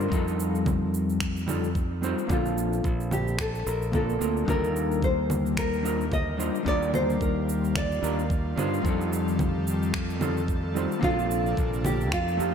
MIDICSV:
0, 0, Header, 1, 6, 480
1, 0, Start_track
1, 0, Tempo, 545455
1, 102, Time_signature, 4, 2, 24, 8
1, 11039, End_track
2, 0, Start_track
2, 0, Title_t, "Nylon-string guitar"
2, 0, Program_c, 0, 24
2, 2034, Note_on_c, 0, 65, 89
2, 2755, Note_on_c, 0, 67, 90
2, 2769, Note_off_c, 0, 65, 0
2, 2996, Note_off_c, 0, 67, 0
2, 2999, Note_on_c, 0, 69, 94
2, 3215, Note_off_c, 0, 69, 0
2, 3236, Note_on_c, 0, 70, 84
2, 3470, Note_off_c, 0, 70, 0
2, 3474, Note_on_c, 0, 69, 92
2, 3955, Note_off_c, 0, 69, 0
2, 3959, Note_on_c, 0, 70, 104
2, 4432, Note_off_c, 0, 70, 0
2, 4436, Note_on_c, 0, 72, 99
2, 4876, Note_off_c, 0, 72, 0
2, 4915, Note_on_c, 0, 70, 110
2, 5394, Note_off_c, 0, 70, 0
2, 5397, Note_on_c, 0, 75, 113
2, 5739, Note_off_c, 0, 75, 0
2, 5876, Note_on_c, 0, 74, 122
2, 6111, Note_off_c, 0, 74, 0
2, 6114, Note_on_c, 0, 72, 103
2, 6178, Note_off_c, 0, 72, 0
2, 6354, Note_on_c, 0, 70, 92
2, 6795, Note_off_c, 0, 70, 0
2, 6837, Note_on_c, 0, 74, 106
2, 7515, Note_off_c, 0, 74, 0
2, 9714, Note_on_c, 0, 65, 118
2, 10155, Note_off_c, 0, 65, 0
2, 10434, Note_on_c, 0, 67, 108
2, 10672, Note_off_c, 0, 67, 0
2, 10676, Note_on_c, 0, 65, 110
2, 11039, Note_off_c, 0, 65, 0
2, 11039, End_track
3, 0, Start_track
3, 0, Title_t, "Hollow-body jazz guitar"
3, 0, Program_c, 1, 26
3, 74, Note_on_c, 1, 55, 102
3, 86, Note_on_c, 1, 60, 95
3, 99, Note_on_c, 1, 63, 90
3, 111, Note_on_c, 1, 65, 93
3, 124, Note_on_c, 1, 69, 106
3, 1263, Note_off_c, 1, 55, 0
3, 1269, Note_off_c, 1, 60, 0
3, 1275, Note_off_c, 1, 63, 0
3, 1281, Note_off_c, 1, 65, 0
3, 1288, Note_off_c, 1, 69, 0
3, 1288, Note_on_c, 1, 55, 91
3, 1294, Note_on_c, 1, 60, 82
3, 1300, Note_on_c, 1, 63, 80
3, 1308, Note_on_c, 1, 65, 83
3, 1312, Note_on_c, 1, 69, 94
3, 1469, Note_off_c, 1, 55, 0
3, 1472, Note_off_c, 1, 60, 0
3, 1475, Note_off_c, 1, 63, 0
3, 1479, Note_off_c, 1, 65, 0
3, 1481, Note_off_c, 1, 69, 0
3, 1772, Note_on_c, 1, 55, 88
3, 1778, Note_on_c, 1, 60, 85
3, 1784, Note_on_c, 1, 63, 83
3, 1790, Note_on_c, 1, 65, 81
3, 1796, Note_on_c, 1, 72, 105
3, 1992, Note_off_c, 1, 55, 0
3, 1995, Note_off_c, 1, 60, 0
3, 1996, Note_on_c, 1, 58, 102
3, 1998, Note_off_c, 1, 63, 0
3, 2001, Note_off_c, 1, 65, 0
3, 2004, Note_off_c, 1, 72, 0
3, 2009, Note_on_c, 1, 60, 89
3, 2021, Note_on_c, 1, 62, 91
3, 2034, Note_on_c, 1, 65, 85
3, 2046, Note_on_c, 1, 69, 109
3, 3184, Note_off_c, 1, 58, 0
3, 3191, Note_off_c, 1, 60, 0
3, 3197, Note_off_c, 1, 62, 0
3, 3203, Note_off_c, 1, 65, 0
3, 3209, Note_off_c, 1, 69, 0
3, 3446, Note_on_c, 1, 58, 88
3, 3453, Note_on_c, 1, 60, 75
3, 3458, Note_on_c, 1, 62, 78
3, 3464, Note_on_c, 1, 65, 80
3, 3471, Note_on_c, 1, 70, 101
3, 3669, Note_off_c, 1, 58, 0
3, 3673, Note_off_c, 1, 60, 0
3, 3675, Note_off_c, 1, 62, 0
3, 3678, Note_off_c, 1, 65, 0
3, 3681, Note_off_c, 1, 70, 0
3, 3686, Note_on_c, 1, 58, 83
3, 3691, Note_on_c, 1, 60, 73
3, 3698, Note_on_c, 1, 62, 75
3, 3704, Note_on_c, 1, 65, 75
3, 3709, Note_on_c, 1, 70, 87
3, 3909, Note_off_c, 1, 58, 0
3, 3912, Note_off_c, 1, 60, 0
3, 3915, Note_off_c, 1, 62, 0
3, 3917, Note_on_c, 1, 55, 96
3, 3918, Note_off_c, 1, 65, 0
3, 3921, Note_off_c, 1, 70, 0
3, 3928, Note_on_c, 1, 62, 88
3, 3940, Note_on_c, 1, 63, 90
3, 3953, Note_on_c, 1, 65, 90
3, 3965, Note_on_c, 1, 70, 113
3, 5104, Note_off_c, 1, 55, 0
3, 5110, Note_off_c, 1, 62, 0
3, 5116, Note_off_c, 1, 63, 0
3, 5122, Note_off_c, 1, 65, 0
3, 5127, Note_on_c, 1, 55, 83
3, 5128, Note_off_c, 1, 70, 0
3, 5132, Note_on_c, 1, 62, 76
3, 5138, Note_on_c, 1, 63, 81
3, 5145, Note_on_c, 1, 65, 77
3, 5151, Note_on_c, 1, 70, 102
3, 5308, Note_off_c, 1, 55, 0
3, 5311, Note_off_c, 1, 62, 0
3, 5314, Note_off_c, 1, 63, 0
3, 5317, Note_off_c, 1, 65, 0
3, 5320, Note_off_c, 1, 70, 0
3, 5605, Note_on_c, 1, 55, 95
3, 5611, Note_on_c, 1, 62, 81
3, 5619, Note_on_c, 1, 63, 79
3, 5623, Note_on_c, 1, 65, 79
3, 5630, Note_on_c, 1, 72, 100
3, 5824, Note_off_c, 1, 55, 0
3, 5832, Note_off_c, 1, 62, 0
3, 5834, Note_on_c, 1, 55, 100
3, 5835, Note_off_c, 1, 63, 0
3, 5838, Note_off_c, 1, 65, 0
3, 5841, Note_off_c, 1, 72, 0
3, 5848, Note_on_c, 1, 62, 88
3, 5859, Note_on_c, 1, 63, 86
3, 5871, Note_on_c, 1, 65, 91
3, 5882, Note_on_c, 1, 70, 109
3, 7023, Note_off_c, 1, 55, 0
3, 7030, Note_off_c, 1, 62, 0
3, 7035, Note_off_c, 1, 63, 0
3, 7041, Note_off_c, 1, 65, 0
3, 7047, Note_off_c, 1, 70, 0
3, 7052, Note_on_c, 1, 55, 95
3, 7057, Note_on_c, 1, 62, 81
3, 7063, Note_on_c, 1, 63, 79
3, 7069, Note_on_c, 1, 65, 78
3, 7074, Note_on_c, 1, 70, 103
3, 7231, Note_off_c, 1, 55, 0
3, 7233, Note_off_c, 1, 62, 0
3, 7236, Note_off_c, 1, 63, 0
3, 7239, Note_off_c, 1, 65, 0
3, 7242, Note_off_c, 1, 70, 0
3, 7533, Note_on_c, 1, 55, 92
3, 7538, Note_on_c, 1, 62, 84
3, 7543, Note_on_c, 1, 63, 87
3, 7549, Note_on_c, 1, 65, 85
3, 7555, Note_on_c, 1, 72, 103
3, 7748, Note_off_c, 1, 55, 0
3, 7755, Note_off_c, 1, 62, 0
3, 7758, Note_off_c, 1, 63, 0
3, 7759, Note_on_c, 1, 55, 106
3, 7760, Note_off_c, 1, 65, 0
3, 7763, Note_off_c, 1, 72, 0
3, 7770, Note_on_c, 1, 60, 90
3, 7782, Note_on_c, 1, 63, 96
3, 7794, Note_on_c, 1, 65, 93
3, 7808, Note_on_c, 1, 69, 109
3, 8945, Note_off_c, 1, 55, 0
3, 8951, Note_off_c, 1, 60, 0
3, 8957, Note_off_c, 1, 63, 0
3, 8963, Note_off_c, 1, 65, 0
3, 8970, Note_off_c, 1, 69, 0
3, 8971, Note_on_c, 1, 55, 92
3, 8975, Note_on_c, 1, 60, 77
3, 8983, Note_on_c, 1, 63, 80
3, 8988, Note_on_c, 1, 65, 88
3, 8994, Note_on_c, 1, 69, 102
3, 9150, Note_off_c, 1, 55, 0
3, 9153, Note_off_c, 1, 60, 0
3, 9156, Note_off_c, 1, 63, 0
3, 9159, Note_off_c, 1, 65, 0
3, 9162, Note_off_c, 1, 69, 0
3, 9451, Note_on_c, 1, 55, 94
3, 9457, Note_on_c, 1, 60, 81
3, 9463, Note_on_c, 1, 63, 82
3, 9470, Note_on_c, 1, 65, 83
3, 9476, Note_on_c, 1, 72, 101
3, 9670, Note_off_c, 1, 55, 0
3, 9674, Note_off_c, 1, 60, 0
3, 9674, Note_on_c, 1, 58, 104
3, 9678, Note_off_c, 1, 63, 0
3, 9681, Note_off_c, 1, 65, 0
3, 9684, Note_off_c, 1, 72, 0
3, 9686, Note_on_c, 1, 60, 99
3, 9699, Note_on_c, 1, 62, 94
3, 9711, Note_on_c, 1, 65, 98
3, 9724, Note_on_c, 1, 69, 110
3, 10635, Note_off_c, 1, 58, 0
3, 10642, Note_off_c, 1, 60, 0
3, 10648, Note_off_c, 1, 62, 0
3, 10654, Note_off_c, 1, 65, 0
3, 10660, Note_off_c, 1, 69, 0
3, 10887, Note_on_c, 1, 57, 97
3, 10893, Note_on_c, 1, 60, 80
3, 10898, Note_on_c, 1, 63, 82
3, 10904, Note_on_c, 1, 65, 82
3, 10912, Note_on_c, 1, 67, 98
3, 11039, Note_off_c, 1, 57, 0
3, 11039, Note_off_c, 1, 60, 0
3, 11039, Note_off_c, 1, 63, 0
3, 11039, Note_off_c, 1, 65, 0
3, 11039, Note_off_c, 1, 67, 0
3, 11039, End_track
4, 0, Start_track
4, 0, Title_t, "Analog synth pad"
4, 0, Program_c, 2, 89
4, 3943, Note_on_c, 2, 58, 69
4, 3944, Note_on_c, 2, 55, 74
4, 5862, Note_on_c, 2, 65, 86
4, 7748, Note_off_c, 2, 55, 0
4, 7748, Note_off_c, 2, 58, 0
4, 7787, Note_on_c, 2, 51, 79
4, 7787, Note_on_c, 2, 55, 68
4, 7788, Note_on_c, 2, 69, 75
4, 9667, Note_off_c, 2, 65, 0
4, 9686, Note_off_c, 2, 51, 0
4, 9686, Note_off_c, 2, 55, 0
4, 9703, Note_on_c, 2, 48, 80
4, 9704, Note_on_c, 2, 58, 75
4, 9705, Note_on_c, 2, 62, 85
4, 10654, Note_off_c, 2, 58, 0
4, 10654, Note_off_c, 2, 62, 0
4, 10658, Note_on_c, 2, 63, 85
4, 10660, Note_on_c, 2, 53, 72
4, 11039, Note_off_c, 2, 48, 0
4, 11039, Note_off_c, 2, 53, 0
4, 11039, Note_off_c, 2, 63, 0
4, 11039, Note_off_c, 2, 69, 0
4, 11039, End_track
5, 0, Start_track
5, 0, Title_t, "Fingered electric bass"
5, 0, Program_c, 3, 33
5, 105, Note_on_c, 3, 41, 100
5, 1874, Note_off_c, 3, 41, 0
5, 2022, Note_on_c, 3, 34, 105
5, 2468, Note_off_c, 3, 34, 0
5, 2502, Note_on_c, 3, 34, 98
5, 3218, Note_off_c, 3, 34, 0
5, 3224, Note_on_c, 3, 34, 92
5, 3668, Note_off_c, 3, 34, 0
5, 3703, Note_on_c, 3, 38, 80
5, 3899, Note_off_c, 3, 38, 0
5, 3942, Note_on_c, 3, 39, 102
5, 5713, Note_off_c, 3, 39, 0
5, 5864, Note_on_c, 3, 39, 107
5, 6308, Note_off_c, 3, 39, 0
5, 6344, Note_on_c, 3, 39, 87
5, 7058, Note_off_c, 3, 39, 0
5, 7063, Note_on_c, 3, 39, 91
5, 7508, Note_off_c, 3, 39, 0
5, 7545, Note_on_c, 3, 43, 80
5, 7741, Note_off_c, 3, 43, 0
5, 7786, Note_on_c, 3, 41, 106
5, 9554, Note_off_c, 3, 41, 0
5, 9706, Note_on_c, 3, 34, 97
5, 10150, Note_off_c, 3, 34, 0
5, 10185, Note_on_c, 3, 34, 88
5, 10665, Note_off_c, 3, 34, 0
5, 10665, Note_on_c, 3, 41, 88
5, 10897, Note_off_c, 3, 41, 0
5, 10902, Note_on_c, 3, 41, 94
5, 11039, Note_off_c, 3, 41, 0
5, 11039, End_track
6, 0, Start_track
6, 0, Title_t, "Drums"
6, 6, Note_on_c, 9, 69, 32
6, 94, Note_off_c, 9, 69, 0
6, 103, Note_on_c, 9, 36, 109
6, 110, Note_on_c, 9, 69, 49
6, 191, Note_off_c, 9, 36, 0
6, 198, Note_off_c, 9, 69, 0
6, 245, Note_on_c, 9, 69, 34
6, 333, Note_off_c, 9, 69, 0
6, 350, Note_on_c, 9, 69, 81
6, 438, Note_off_c, 9, 69, 0
6, 486, Note_on_c, 9, 69, 36
6, 574, Note_off_c, 9, 69, 0
6, 583, Note_on_c, 9, 36, 117
6, 583, Note_on_c, 9, 64, 77
6, 592, Note_on_c, 9, 69, 45
6, 671, Note_off_c, 9, 36, 0
6, 671, Note_off_c, 9, 64, 0
6, 680, Note_off_c, 9, 69, 0
6, 829, Note_on_c, 9, 69, 79
6, 917, Note_off_c, 9, 69, 0
6, 964, Note_on_c, 9, 69, 33
6, 1052, Note_off_c, 9, 69, 0
6, 1060, Note_on_c, 9, 26, 81
6, 1063, Note_on_c, 9, 36, 109
6, 1068, Note_on_c, 9, 69, 48
6, 1148, Note_off_c, 9, 26, 0
6, 1151, Note_off_c, 9, 36, 0
6, 1156, Note_off_c, 9, 69, 0
6, 1203, Note_on_c, 9, 69, 32
6, 1291, Note_off_c, 9, 69, 0
6, 1300, Note_on_c, 9, 64, 78
6, 1308, Note_on_c, 9, 69, 82
6, 1388, Note_off_c, 9, 64, 0
6, 1396, Note_off_c, 9, 69, 0
6, 1443, Note_on_c, 9, 69, 33
6, 1531, Note_off_c, 9, 69, 0
6, 1542, Note_on_c, 9, 36, 113
6, 1549, Note_on_c, 9, 69, 42
6, 1630, Note_off_c, 9, 36, 0
6, 1637, Note_off_c, 9, 69, 0
6, 1789, Note_on_c, 9, 69, 82
6, 1877, Note_off_c, 9, 69, 0
6, 1923, Note_on_c, 9, 69, 35
6, 2011, Note_off_c, 9, 69, 0
6, 2019, Note_on_c, 9, 64, 74
6, 2021, Note_on_c, 9, 36, 112
6, 2027, Note_on_c, 9, 69, 49
6, 2107, Note_off_c, 9, 64, 0
6, 2109, Note_off_c, 9, 36, 0
6, 2115, Note_off_c, 9, 69, 0
6, 2162, Note_on_c, 9, 69, 35
6, 2250, Note_off_c, 9, 69, 0
6, 2269, Note_on_c, 9, 69, 80
6, 2357, Note_off_c, 9, 69, 0
6, 2402, Note_on_c, 9, 69, 32
6, 2490, Note_off_c, 9, 69, 0
6, 2502, Note_on_c, 9, 36, 110
6, 2509, Note_on_c, 9, 69, 46
6, 2590, Note_off_c, 9, 36, 0
6, 2597, Note_off_c, 9, 69, 0
6, 2643, Note_on_c, 9, 69, 31
6, 2731, Note_off_c, 9, 69, 0
6, 2740, Note_on_c, 9, 64, 76
6, 2748, Note_on_c, 9, 69, 79
6, 2828, Note_off_c, 9, 64, 0
6, 2836, Note_off_c, 9, 69, 0
6, 2884, Note_on_c, 9, 69, 33
6, 2972, Note_off_c, 9, 69, 0
6, 2979, Note_on_c, 9, 26, 78
6, 2981, Note_on_c, 9, 36, 108
6, 2988, Note_on_c, 9, 69, 48
6, 3067, Note_off_c, 9, 26, 0
6, 3069, Note_off_c, 9, 36, 0
6, 3076, Note_off_c, 9, 69, 0
6, 3124, Note_on_c, 9, 69, 32
6, 3212, Note_off_c, 9, 69, 0
6, 3229, Note_on_c, 9, 69, 84
6, 3317, Note_off_c, 9, 69, 0
6, 3364, Note_on_c, 9, 69, 34
6, 3452, Note_off_c, 9, 69, 0
6, 3461, Note_on_c, 9, 64, 62
6, 3462, Note_on_c, 9, 36, 110
6, 3469, Note_on_c, 9, 69, 42
6, 3549, Note_off_c, 9, 64, 0
6, 3550, Note_off_c, 9, 36, 0
6, 3557, Note_off_c, 9, 69, 0
6, 3604, Note_on_c, 9, 69, 33
6, 3692, Note_off_c, 9, 69, 0
6, 3709, Note_on_c, 9, 69, 81
6, 3797, Note_off_c, 9, 69, 0
6, 3845, Note_on_c, 9, 69, 34
6, 3933, Note_off_c, 9, 69, 0
6, 3942, Note_on_c, 9, 36, 104
6, 3942, Note_on_c, 9, 64, 78
6, 3951, Note_on_c, 9, 69, 46
6, 4030, Note_off_c, 9, 36, 0
6, 4030, Note_off_c, 9, 64, 0
6, 4039, Note_off_c, 9, 69, 0
6, 4086, Note_on_c, 9, 69, 33
6, 4174, Note_off_c, 9, 69, 0
6, 4191, Note_on_c, 9, 69, 78
6, 4279, Note_off_c, 9, 69, 0
6, 4326, Note_on_c, 9, 69, 33
6, 4414, Note_off_c, 9, 69, 0
6, 4422, Note_on_c, 9, 36, 104
6, 4431, Note_on_c, 9, 69, 45
6, 4510, Note_off_c, 9, 36, 0
6, 4519, Note_off_c, 9, 69, 0
6, 4663, Note_on_c, 9, 64, 75
6, 4671, Note_on_c, 9, 69, 76
6, 4751, Note_off_c, 9, 64, 0
6, 4759, Note_off_c, 9, 69, 0
6, 4806, Note_on_c, 9, 69, 33
6, 4894, Note_off_c, 9, 69, 0
6, 4902, Note_on_c, 9, 36, 110
6, 4905, Note_on_c, 9, 26, 77
6, 4913, Note_on_c, 9, 69, 47
6, 4990, Note_off_c, 9, 36, 0
6, 4993, Note_off_c, 9, 26, 0
6, 5001, Note_off_c, 9, 69, 0
6, 5046, Note_on_c, 9, 69, 30
6, 5134, Note_off_c, 9, 69, 0
6, 5153, Note_on_c, 9, 69, 79
6, 5241, Note_off_c, 9, 69, 0
6, 5288, Note_on_c, 9, 69, 33
6, 5376, Note_off_c, 9, 69, 0
6, 5382, Note_on_c, 9, 36, 109
6, 5385, Note_on_c, 9, 64, 70
6, 5393, Note_on_c, 9, 69, 38
6, 5470, Note_off_c, 9, 36, 0
6, 5473, Note_off_c, 9, 64, 0
6, 5481, Note_off_c, 9, 69, 0
6, 5632, Note_on_c, 9, 69, 75
6, 5720, Note_off_c, 9, 69, 0
6, 5767, Note_on_c, 9, 69, 34
6, 5855, Note_off_c, 9, 69, 0
6, 5863, Note_on_c, 9, 36, 97
6, 5872, Note_on_c, 9, 69, 45
6, 5951, Note_off_c, 9, 36, 0
6, 5960, Note_off_c, 9, 69, 0
6, 6007, Note_on_c, 9, 69, 30
6, 6095, Note_off_c, 9, 69, 0
6, 6105, Note_on_c, 9, 64, 72
6, 6114, Note_on_c, 9, 69, 72
6, 6193, Note_off_c, 9, 64, 0
6, 6202, Note_off_c, 9, 69, 0
6, 6247, Note_on_c, 9, 69, 30
6, 6335, Note_off_c, 9, 69, 0
6, 6343, Note_on_c, 9, 36, 109
6, 6353, Note_on_c, 9, 69, 44
6, 6431, Note_off_c, 9, 36, 0
6, 6441, Note_off_c, 9, 69, 0
6, 6592, Note_on_c, 9, 69, 75
6, 6680, Note_off_c, 9, 69, 0
6, 6728, Note_on_c, 9, 69, 31
6, 6816, Note_off_c, 9, 69, 0
6, 6824, Note_on_c, 9, 36, 105
6, 6825, Note_on_c, 9, 26, 78
6, 6825, Note_on_c, 9, 64, 78
6, 6833, Note_on_c, 9, 69, 43
6, 6912, Note_off_c, 9, 36, 0
6, 6913, Note_off_c, 9, 26, 0
6, 6913, Note_off_c, 9, 64, 0
6, 6921, Note_off_c, 9, 69, 0
6, 6970, Note_on_c, 9, 69, 27
6, 7058, Note_off_c, 9, 69, 0
6, 7074, Note_on_c, 9, 69, 78
6, 7162, Note_off_c, 9, 69, 0
6, 7209, Note_on_c, 9, 69, 32
6, 7297, Note_off_c, 9, 69, 0
6, 7305, Note_on_c, 9, 36, 104
6, 7315, Note_on_c, 9, 69, 39
6, 7393, Note_off_c, 9, 36, 0
6, 7403, Note_off_c, 9, 69, 0
6, 7546, Note_on_c, 9, 64, 76
6, 7555, Note_on_c, 9, 69, 75
6, 7634, Note_off_c, 9, 64, 0
6, 7643, Note_off_c, 9, 69, 0
6, 7691, Note_on_c, 9, 69, 33
6, 7779, Note_off_c, 9, 69, 0
6, 7785, Note_on_c, 9, 36, 93
6, 7794, Note_on_c, 9, 69, 44
6, 7873, Note_off_c, 9, 36, 0
6, 7882, Note_off_c, 9, 69, 0
6, 7929, Note_on_c, 9, 69, 30
6, 8017, Note_off_c, 9, 69, 0
6, 8033, Note_on_c, 9, 69, 70
6, 8121, Note_off_c, 9, 69, 0
6, 8168, Note_on_c, 9, 69, 31
6, 8256, Note_off_c, 9, 69, 0
6, 8265, Note_on_c, 9, 36, 106
6, 8265, Note_on_c, 9, 64, 78
6, 8273, Note_on_c, 9, 69, 43
6, 8353, Note_off_c, 9, 36, 0
6, 8353, Note_off_c, 9, 64, 0
6, 8361, Note_off_c, 9, 69, 0
6, 8513, Note_on_c, 9, 69, 73
6, 8601, Note_off_c, 9, 69, 0
6, 8648, Note_on_c, 9, 69, 33
6, 8736, Note_off_c, 9, 69, 0
6, 8745, Note_on_c, 9, 36, 105
6, 8746, Note_on_c, 9, 26, 81
6, 8754, Note_on_c, 9, 69, 42
6, 8833, Note_off_c, 9, 36, 0
6, 8834, Note_off_c, 9, 26, 0
6, 8842, Note_off_c, 9, 69, 0
6, 8887, Note_on_c, 9, 69, 27
6, 8975, Note_off_c, 9, 69, 0
6, 8985, Note_on_c, 9, 64, 84
6, 8993, Note_on_c, 9, 69, 74
6, 9073, Note_off_c, 9, 64, 0
6, 9081, Note_off_c, 9, 69, 0
6, 9129, Note_on_c, 9, 69, 31
6, 9217, Note_off_c, 9, 69, 0
6, 9225, Note_on_c, 9, 36, 106
6, 9233, Note_on_c, 9, 69, 40
6, 9313, Note_off_c, 9, 36, 0
6, 9321, Note_off_c, 9, 69, 0
6, 9472, Note_on_c, 9, 69, 74
6, 9560, Note_off_c, 9, 69, 0
6, 9608, Note_on_c, 9, 69, 32
6, 9696, Note_off_c, 9, 69, 0
6, 9704, Note_on_c, 9, 36, 98
6, 9704, Note_on_c, 9, 64, 81
6, 9712, Note_on_c, 9, 69, 48
6, 9792, Note_off_c, 9, 36, 0
6, 9792, Note_off_c, 9, 64, 0
6, 9800, Note_off_c, 9, 69, 0
6, 9849, Note_on_c, 9, 69, 31
6, 9937, Note_off_c, 9, 69, 0
6, 9952, Note_on_c, 9, 69, 74
6, 10040, Note_off_c, 9, 69, 0
6, 10087, Note_on_c, 9, 69, 31
6, 10175, Note_off_c, 9, 69, 0
6, 10184, Note_on_c, 9, 36, 108
6, 10191, Note_on_c, 9, 69, 43
6, 10272, Note_off_c, 9, 36, 0
6, 10279, Note_off_c, 9, 69, 0
6, 10326, Note_on_c, 9, 69, 30
6, 10414, Note_off_c, 9, 69, 0
6, 10424, Note_on_c, 9, 64, 88
6, 10433, Note_on_c, 9, 69, 76
6, 10512, Note_off_c, 9, 64, 0
6, 10521, Note_off_c, 9, 69, 0
6, 10568, Note_on_c, 9, 69, 32
6, 10656, Note_off_c, 9, 69, 0
6, 10664, Note_on_c, 9, 36, 108
6, 10665, Note_on_c, 9, 26, 82
6, 10674, Note_on_c, 9, 69, 42
6, 10752, Note_off_c, 9, 36, 0
6, 10753, Note_off_c, 9, 26, 0
6, 10762, Note_off_c, 9, 69, 0
6, 10809, Note_on_c, 9, 69, 31
6, 10897, Note_off_c, 9, 69, 0
6, 10913, Note_on_c, 9, 69, 77
6, 11001, Note_off_c, 9, 69, 0
6, 11039, End_track
0, 0, End_of_file